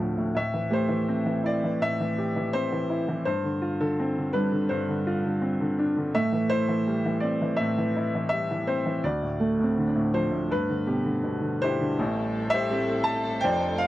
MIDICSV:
0, 0, Header, 1, 4, 480
1, 0, Start_track
1, 0, Key_signature, 0, "minor"
1, 0, Tempo, 724638
1, 233, Time_signature, 4, 2, 24, 8
1, 5990, Tempo, 730816
1, 9160, End_track
2, 0, Start_track
2, 0, Title_t, "Harp"
2, 0, Program_c, 0, 46
2, 0, Note_on_c, 0, 60, 34
2, 0, Note_on_c, 0, 65, 40
2, 0, Note_on_c, 0, 69, 35
2, 145, Note_off_c, 0, 69, 0
2, 210, Note_off_c, 0, 65, 0
2, 468, Note_on_c, 0, 57, 47
2, 1248, Note_off_c, 0, 60, 0
2, 2673, Note_off_c, 0, 57, 0
2, 2875, Note_on_c, 0, 55, 42
2, 4070, Note_on_c, 0, 57, 61
2, 4102, Note_off_c, 0, 55, 0
2, 6222, Note_off_c, 0, 57, 0
2, 6225, Note_on_c, 0, 57, 43
2, 6379, Note_on_c, 0, 60, 41
2, 6533, Note_on_c, 0, 62, 41
2, 7186, Note_on_c, 0, 47, 35
2, 7948, Note_off_c, 0, 47, 0
2, 8350, Note_off_c, 0, 60, 0
2, 8372, Note_off_c, 0, 62, 0
2, 8396, Note_on_c, 0, 67, 52
2, 8411, Note_off_c, 0, 57, 0
2, 9160, Note_off_c, 0, 67, 0
2, 9160, End_track
3, 0, Start_track
3, 0, Title_t, "String section"
3, 0, Program_c, 1, 48
3, 7919, Note_on_c, 1, 69, 72
3, 7919, Note_on_c, 1, 72, 58
3, 7921, Note_on_c, 1, 64, 57
3, 7922, Note_on_c, 1, 55, 65
3, 7923, Note_on_c, 1, 57, 56
3, 8864, Note_off_c, 1, 64, 0
3, 8865, Note_off_c, 1, 55, 0
3, 8866, Note_off_c, 1, 57, 0
3, 8878, Note_on_c, 1, 57, 63
3, 8880, Note_on_c, 1, 53, 59
3, 8883, Note_on_c, 1, 62, 58
3, 9160, Note_off_c, 1, 53, 0
3, 9160, Note_off_c, 1, 57, 0
3, 9160, Note_off_c, 1, 62, 0
3, 9160, Note_off_c, 1, 69, 0
3, 9160, Note_off_c, 1, 72, 0
3, 9160, End_track
4, 0, Start_track
4, 0, Title_t, "Upright piano"
4, 0, Program_c, 2, 0
4, 0, Control_c, 2, 64, 127
4, 0, Note_on_c, 2, 38, 46
4, 0, Note_on_c, 2, 45, 37
4, 0, Note_on_c, 2, 50, 38
4, 0, Note_on_c, 2, 53, 38
4, 0, Note_on_c, 2, 57, 43
4, 106, Note_off_c, 2, 45, 0
4, 116, Note_on_c, 2, 45, 39
4, 208, Note_off_c, 2, 38, 0
4, 215, Note_off_c, 2, 57, 0
4, 218, Note_off_c, 2, 50, 0
4, 219, Note_off_c, 2, 45, 0
4, 227, Note_off_c, 2, 53, 0
4, 229, Note_on_c, 2, 45, 45
4, 240, Control_c, 2, 64, 0
4, 242, Note_on_c, 2, 76, 75
4, 343, Control_c, 2, 64, 127
4, 355, Note_on_c, 2, 52, 30
4, 462, Note_off_c, 2, 76, 0
4, 467, Note_on_c, 2, 67, 43
4, 485, Note_on_c, 2, 72, 65
4, 576, Note_off_c, 2, 52, 0
4, 586, Note_on_c, 2, 52, 40
4, 717, Note_on_c, 2, 60, 44
4, 824, Note_off_c, 2, 52, 0
4, 834, Note_on_c, 2, 52, 41
4, 935, Note_off_c, 2, 72, 0
4, 953, Note_on_c, 2, 64, 38
4, 966, Note_on_c, 2, 74, 66
4, 1076, Note_off_c, 2, 52, 0
4, 1086, Note_on_c, 2, 52, 37
4, 1189, Note_off_c, 2, 45, 0
4, 1199, Note_on_c, 2, 45, 44
4, 1206, Note_on_c, 2, 76, 80
4, 1209, Note_off_c, 2, 74, 0
4, 1317, Note_off_c, 2, 52, 0
4, 1327, Note_on_c, 2, 52, 39
4, 1408, Note_off_c, 2, 67, 0
4, 1446, Note_on_c, 2, 67, 44
4, 1555, Note_off_c, 2, 52, 0
4, 1565, Note_on_c, 2, 52, 37
4, 1652, Note_off_c, 2, 60, 0
4, 1677, Note_on_c, 2, 72, 74
4, 1682, Note_on_c, 2, 60, 42
4, 1696, Note_off_c, 2, 76, 0
4, 1794, Note_off_c, 2, 52, 0
4, 1804, Note_on_c, 2, 52, 38
4, 1889, Note_off_c, 2, 64, 0
4, 1918, Note_on_c, 2, 64, 39
4, 2032, Note_off_c, 2, 52, 0
4, 2042, Note_on_c, 2, 52, 42
4, 2131, Note_off_c, 2, 45, 0
4, 2139, Note_off_c, 2, 67, 0
4, 2145, Note_off_c, 2, 60, 0
4, 2145, Note_off_c, 2, 72, 0
4, 2150, Note_off_c, 2, 64, 0
4, 2155, Note_on_c, 2, 72, 66
4, 2156, Note_off_c, 2, 52, 0
4, 2161, Note_on_c, 2, 43, 45
4, 2164, Control_c, 2, 64, 0
4, 2264, Control_c, 2, 64, 127
4, 2275, Note_on_c, 2, 50, 34
4, 2396, Note_on_c, 2, 65, 42
4, 2509, Note_off_c, 2, 50, 0
4, 2519, Note_on_c, 2, 50, 41
4, 2521, Note_on_c, 2, 69, 62
4, 2525, Note_off_c, 2, 72, 0
4, 2646, Note_on_c, 2, 60, 43
4, 2753, Note_off_c, 2, 50, 0
4, 2763, Note_on_c, 2, 50, 37
4, 2868, Note_on_c, 2, 71, 64
4, 2882, Note_on_c, 2, 62, 37
4, 2887, Note_off_c, 2, 69, 0
4, 2984, Note_off_c, 2, 50, 0
4, 2994, Note_on_c, 2, 50, 40
4, 3093, Note_off_c, 2, 71, 0
4, 3104, Note_off_c, 2, 43, 0
4, 3107, Note_on_c, 2, 72, 60
4, 3114, Note_on_c, 2, 43, 48
4, 3226, Note_off_c, 2, 50, 0
4, 3236, Note_on_c, 2, 50, 41
4, 3324, Note_off_c, 2, 65, 0
4, 3357, Note_on_c, 2, 65, 48
4, 3468, Note_off_c, 2, 50, 0
4, 3478, Note_on_c, 2, 50, 34
4, 3569, Note_off_c, 2, 60, 0
4, 3588, Note_on_c, 2, 60, 42
4, 3704, Note_off_c, 2, 50, 0
4, 3713, Note_on_c, 2, 50, 42
4, 3801, Note_off_c, 2, 72, 0
4, 3807, Note_off_c, 2, 62, 0
4, 3834, Note_on_c, 2, 62, 46
4, 3942, Note_off_c, 2, 50, 0
4, 3952, Note_on_c, 2, 50, 46
4, 4044, Note_off_c, 2, 43, 0
4, 4051, Note_off_c, 2, 65, 0
4, 4054, Note_off_c, 2, 60, 0
4, 4064, Note_off_c, 2, 62, 0
4, 4067, Note_off_c, 2, 50, 0
4, 4067, Note_on_c, 2, 45, 50
4, 4071, Note_on_c, 2, 76, 79
4, 4078, Control_c, 2, 64, 0
4, 4189, Note_on_c, 2, 52, 39
4, 4192, Control_c, 2, 64, 127
4, 4302, Note_on_c, 2, 72, 83
4, 4307, Note_on_c, 2, 64, 48
4, 4317, Note_off_c, 2, 76, 0
4, 4419, Note_off_c, 2, 52, 0
4, 4428, Note_on_c, 2, 52, 40
4, 4552, Note_on_c, 2, 55, 41
4, 4663, Note_off_c, 2, 52, 0
4, 4673, Note_on_c, 2, 52, 39
4, 4771, Note_on_c, 2, 74, 63
4, 4789, Note_on_c, 2, 60, 38
4, 4800, Note_off_c, 2, 72, 0
4, 4903, Note_off_c, 2, 52, 0
4, 4913, Note_on_c, 2, 52, 40
4, 5011, Note_on_c, 2, 76, 70
4, 5026, Note_off_c, 2, 45, 0
4, 5027, Note_off_c, 2, 74, 0
4, 5036, Note_on_c, 2, 45, 54
4, 5145, Note_off_c, 2, 52, 0
4, 5154, Note_on_c, 2, 52, 40
4, 5241, Note_off_c, 2, 64, 0
4, 5276, Note_on_c, 2, 64, 48
4, 5388, Note_off_c, 2, 52, 0
4, 5398, Note_on_c, 2, 52, 36
4, 5481, Note_off_c, 2, 76, 0
4, 5484, Note_off_c, 2, 55, 0
4, 5491, Note_on_c, 2, 76, 80
4, 5514, Note_on_c, 2, 55, 38
4, 5626, Note_off_c, 2, 52, 0
4, 5636, Note_on_c, 2, 52, 38
4, 5722, Note_off_c, 2, 60, 0
4, 5745, Note_on_c, 2, 72, 65
4, 5747, Note_off_c, 2, 76, 0
4, 5747, Note_on_c, 2, 60, 39
4, 5859, Note_off_c, 2, 52, 0
4, 5869, Note_on_c, 2, 52, 42
4, 5966, Note_off_c, 2, 45, 0
4, 5971, Note_off_c, 2, 64, 0
4, 5977, Note_off_c, 2, 55, 0
4, 5981, Note_off_c, 2, 60, 0
4, 5985, Note_off_c, 2, 52, 0
4, 5986, Note_on_c, 2, 38, 46
4, 5986, Note_on_c, 2, 74, 60
4, 5994, Note_off_c, 2, 72, 0
4, 5997, Control_c, 2, 64, 0
4, 6107, Note_on_c, 2, 45, 40
4, 6118, Control_c, 2, 64, 127
4, 6224, Note_on_c, 2, 57, 37
4, 6338, Note_off_c, 2, 45, 0
4, 6347, Note_on_c, 2, 45, 36
4, 6440, Note_off_c, 2, 74, 0
4, 6471, Note_on_c, 2, 50, 41
4, 6580, Note_off_c, 2, 45, 0
4, 6590, Note_on_c, 2, 45, 40
4, 6710, Note_on_c, 2, 53, 40
4, 6710, Note_on_c, 2, 72, 63
4, 6815, Note_off_c, 2, 45, 0
4, 6825, Note_on_c, 2, 45, 37
4, 6921, Note_off_c, 2, 38, 0
4, 6925, Note_off_c, 2, 57, 0
4, 6933, Note_off_c, 2, 72, 0
4, 6936, Note_off_c, 2, 50, 0
4, 6942, Note_off_c, 2, 53, 0
4, 6943, Note_off_c, 2, 45, 0
4, 6951, Note_on_c, 2, 43, 51
4, 6957, Note_on_c, 2, 71, 72
4, 6958, Control_c, 2, 64, 0
4, 7055, Control_c, 2, 64, 127
4, 7072, Note_on_c, 2, 50, 34
4, 7190, Note_on_c, 2, 67, 44
4, 7295, Note_off_c, 2, 50, 0
4, 7305, Note_on_c, 2, 50, 35
4, 7425, Note_on_c, 2, 47, 40
4, 7536, Note_off_c, 2, 50, 0
4, 7546, Note_on_c, 2, 50, 37
4, 7652, Note_off_c, 2, 71, 0
4, 7677, Note_on_c, 2, 62, 37
4, 7680, Note_on_c, 2, 72, 79
4, 7684, Note_off_c, 2, 67, 0
4, 7694, Note_on_c, 2, 67, 48
4, 7695, Note_on_c, 2, 64, 49
4, 7788, Note_off_c, 2, 50, 0
4, 7798, Note_on_c, 2, 50, 41
4, 7891, Note_off_c, 2, 43, 0
4, 7898, Note_off_c, 2, 47, 0
4, 7910, Note_off_c, 2, 62, 0
4, 7913, Note_off_c, 2, 50, 0
4, 7925, Control_c, 2, 64, 0
4, 7925, Note_on_c, 2, 33, 53
4, 7925, Note_on_c, 2, 45, 53
4, 8040, Control_c, 2, 64, 127
4, 8261, Note_on_c, 2, 76, 92
4, 8275, Note_off_c, 2, 72, 0
4, 8277, Note_off_c, 2, 67, 0
4, 8285, Note_on_c, 2, 72, 62
4, 8287, Note_on_c, 2, 67, 59
4, 8400, Note_on_c, 2, 55, 44
4, 8402, Note_on_c, 2, 57, 36
4, 8405, Note_on_c, 2, 60, 49
4, 8614, Note_on_c, 2, 81, 88
4, 8617, Note_off_c, 2, 64, 0
4, 8637, Note_off_c, 2, 76, 0
4, 8844, Note_off_c, 2, 81, 0
4, 8850, Note_off_c, 2, 33, 0
4, 8850, Note_off_c, 2, 45, 0
4, 8850, Note_off_c, 2, 72, 0
4, 8851, Note_off_c, 2, 67, 0
4, 8856, Note_on_c, 2, 79, 92
4, 8860, Note_off_c, 2, 55, 0
4, 8861, Note_off_c, 2, 57, 0
4, 8862, Note_off_c, 2, 60, 0
4, 8876, Note_on_c, 2, 72, 60
4, 8877, Note_on_c, 2, 41, 58
4, 8878, Note_on_c, 2, 29, 51
4, 8880, Note_on_c, 2, 74, 65
4, 8881, Control_c, 2, 64, 0
4, 8982, Control_c, 2, 64, 127
4, 9102, Note_on_c, 2, 77, 88
4, 9109, Note_off_c, 2, 79, 0
4, 9160, Note_off_c, 2, 29, 0
4, 9160, Note_off_c, 2, 41, 0
4, 9160, Note_off_c, 2, 72, 0
4, 9160, Note_off_c, 2, 74, 0
4, 9160, Note_off_c, 2, 77, 0
4, 9160, End_track
0, 0, End_of_file